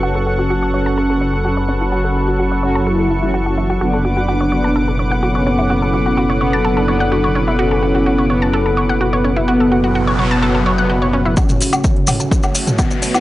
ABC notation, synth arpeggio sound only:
X:1
M:4/4
L:1/16
Q:1/4=127
K:F#m
V:1 name="Synth arpeggio sound"
F A F F F c c a A A c F F c C E | F A F F F c c a A A E E F F E F | F A F F F c c a A A c f F c C E | F A F F F c c a A A c f F c C E |
F A F F F c c a A A c f F c C E | F A F F F c c a A A c f F c C E | z A F F F c c a A A c f F c C E |]